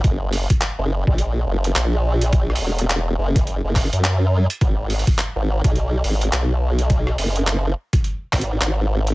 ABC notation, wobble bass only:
X:1
M:4/4
L:1/16
Q:"Swing 16ths" 1/4=105
K:G#m
V:1 name="Wobble bass" clef=bass
F,,,3 z2 F,,,2 A,,,3 F,,,2 A,,,4- | A,,,2 E,,,4 F,,,3 F,,,2 F,,4 z | G,,,3 z2 G,,,2 B,,,3 G,,,2 B,,,4- | B,,,2 F,,,4 z4 G,,,2 G,,,4 |]